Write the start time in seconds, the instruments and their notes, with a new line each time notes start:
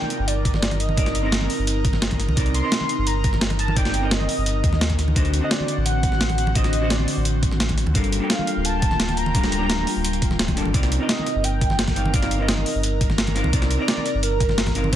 Already playing: hollow-body jazz guitar C3 C4 D#4 A#4 D5, analog synth pad D#4 A#4, soft synth lead G5
0.02 high conga
0.10 closed hi-hat
0.19 sub bass G1
0.27 soft synth lead D5, closed hi-hat
0.45 kick, closed hi-hat
0.54 snare, high conga
0.63 snare, closed hi-hat
0.71 snare, closed hi-hat, high conga
0.80 soft synth lead D#5, closed hi-hat
0.89 high conga
0.96 hollow-body jazz guitar C3 C4 D#4 A#4 D5, kick, closed hi-hat
1.06 snare, closed hi-hat
1.15 closed hi-hat
1.21 hollow-body jazz guitar C3 C4 D#4 A#4
1.26 hollow-body jazz guitar D#5
1.32 snare, closed hi-hat
1.41 high conga
1.50 open hi-hat
1.59 sub bass G1
1.67 closed hi-hat
1.85 kick, closed hi-hat
1.93 snare, high conga
2.02 snare, closed hi-hat
2.11 kick, closed hi-hat, high conga
2.20 snare, closed hi-hat
2.28 sub bass C2, high conga
2.36 sub bass C2, hollow-body jazz guitar C3 C4 D#4 A#4 D5, kick, closed hi-hat
2.46 closed hi-hat
2.54 soft synth lead C6, closed hi-hat
2.61 hollow-body jazz guitar C3 C4 D#4 A#4
2.66 hollow-body jazz guitar D#5
2.72 snare, closed hi-hat
2.81 high conga
2.89 closed hi-hat
2.98 sub bass G1
3.07 soft synth lead A#5, closed hi-hat
3.24 kick, closed hi-hat
3.33 snare, high conga
3.41 snare, closed hi-hat
3.50 snare, closed hi-hat, high conga
3.59 soft synth lead A5, closed hi-hat
3.68 high conga
3.75 hollow-body jazz guitar C3 C4 D#4 A#4 D5, soft synth lead G5, kick, closed hi-hat
3.85 snare, closed hi-hat
3.94 closed hi-hat
4.01 hollow-body jazz guitar C3 C4 D#4 A#4
4.05 hollow-body jazz guitar D#5
4.11 soft synth lead D#5, snare, closed hi-hat
4.21 high conga
4.29 open hi-hat
4.38 sub bass G1
4.46 closed hi-hat
4.64 sub bass D#2, kick, closed hi-hat
4.73 snare, high conga
4.81 snare, closed hi-hat
4.90 kick, closed hi-hat, high conga
4.98 sub bass D2, analog synth pad C4 F#4, snare, closed hi-hat
5.08 high conga
5.15 sub bass D2, hollow-body jazz guitar D3 D4 F#4 C5 D#5, kick, closed hi-hat
5.25 closed hi-hat
5.34 closed hi-hat
5.40 hollow-body jazz guitar D3 D4 F#4 C5, soft synth lead D#5
5.45 hollow-body jazz guitar F#5
5.51 soft synth lead D5, snare, closed hi-hat
5.60 high conga
5.68 closed hi-hat
5.77 sub bass A1
5.86 soft synth lead F#5, closed hi-hat
6.03 kick, closed hi-hat
6.12 snare, high conga
6.21 snare, closed hi-hat
6.30 snare, closed hi-hat, high conga
6.38 closed hi-hat
6.47 high conga
6.55 hollow-body jazz guitar D3 D4 F#4 C5 D#5, soft synth lead D#5, kick, closed hi-hat
6.64 snare, closed hi-hat
6.73 closed hi-hat
6.80 hollow-body jazz guitar D3 D4 F#4 C5
6.84 hollow-body jazz guitar F#5
6.90 soft synth lead D5, snare, closed hi-hat
7.00 high conga
7.08 open hi-hat
7.17 sub bass A1
7.25 closed hi-hat
7.43 kick, closed hi-hat
7.51 snare, high conga
7.60 snare, closed hi-hat
7.69 kick, closed hi-hat, high conga
7.78 snare, closed hi-hat
7.86 sub bass D2, high conga
7.94 sub bass G1, hollow-body jazz guitar G3 D4 A4 A#4 F5, analog synth pad A#3 F4 G5, kick, closed hi-hat
8.04 closed hi-hat
8.12 closed hi-hat
8.19 hollow-body jazz guitar G3 D4 A4 A#4
8.24 hollow-body jazz guitar G5
8.30 soft synth lead F5, snare, closed hi-hat
8.39 high conga
8.47 closed hi-hat
8.56 sub bass D1
8.65 soft synth lead A5, closed hi-hat
8.82 kick, closed hi-hat
8.91 snare, high conga
9.00 snare, closed hi-hat
9.09 snare, closed hi-hat, high conga
9.17 soft synth lead A#5, closed hi-hat
9.26 high conga
9.34 hollow-body jazz guitar G3 D4 A4 A#4 F5, kick, closed hi-hat
9.44 snare, closed hi-hat
9.52 closed hi-hat
9.59 hollow-body jazz guitar G3 D4 G4 A#4
9.63 hollow-body jazz guitar G5
9.70 snare, closed hi-hat
9.78 high conga
9.87 snare, open hi-hat
9.96 sub bass D1
10.04 closed hi-hat
10.13 closed hi-hat
10.22 kick, closed hi-hat
10.31 snare, high conga
10.39 snare, closed hi-hat
10.48 kick, closed hi-hat, high conga
10.56 hollow-body jazz guitar G3 D4 A4 A#4 A5, snare, closed hi-hat
10.65 sub bass G1, high conga
10.73 sub bass C2, hollow-body jazz guitar C3 C4 D#4 A#4 D5, analog synth pad A#4, kick, closed hi-hat
10.83 snare, closed hi-hat
10.92 closed hi-hat
10.98 hollow-body jazz guitar C3 C4 D#4 A#4
11.03 hollow-body jazz guitar D#5
11.09 soft synth lead D#5, snare, closed hi-hat
11.19 high conga
11.27 snare, closed hi-hat
11.35 sub bass G1
11.44 soft synth lead G5, closed hi-hat
11.61 kick, closed hi-hat
11.70 snare, high conga
11.79 snare, closed hi-hat
11.88 kick, snare, closed hi-hat, high conga
11.95 hollow-body jazz guitar C3 C4 D#4 A#4 F5, closed hi-hat
12.05 high conga
12.13 hollow-body jazz guitar C3 C4 D#4 A#4 D5, soft synth lead F5, kick, closed hi-hat
12.23 snare, closed hi-hat
12.31 closed hi-hat
12.38 hollow-body jazz guitar C3 C4 D#4 A#4
12.42 hollow-body jazz guitar D#5
12.49 soft synth lead D#5, snare, closed hi-hat
12.57 high conga
12.66 open hi-hat
12.75 sub bass G1
12.83 closed hi-hat
13.01 kick, closed hi-hat
13.10 snare, high conga
13.18 snare, closed hi-hat
13.27 closed hi-hat, high conga
13.35 hollow-body jazz guitar C3 C4 D#4 A#4 F5, snare, closed hi-hat
13.44 sub bass C2, high conga
13.52 sub bass C2, hollow-body jazz guitar C3 C4 D#4 A#4 D5, kick, closed hi-hat
13.62 snare, closed hi-hat
13.71 closed hi-hat
13.77 hollow-body jazz guitar C3 C4 D#4 A#4
13.82 hollow-body jazz guitar D5
13.88 soft synth lead D5, snare, closed hi-hat
13.97 high conga
14.06 snare, closed hi-hat
14.14 sub bass G1
14.23 soft synth lead A#4, closed hi-hat
14.40 kick, closed hi-hat
14.49 snare, high conga
14.58 snare, closed hi-hat
14.66 kick, snare, closed hi-hat, high conga
14.74 hollow-body jazz guitar C3 C4 D#4 A#4 F5, closed hi-hat
14.84 high conga
14.92 hollow-body jazz guitar C3 C4, closed hi-hat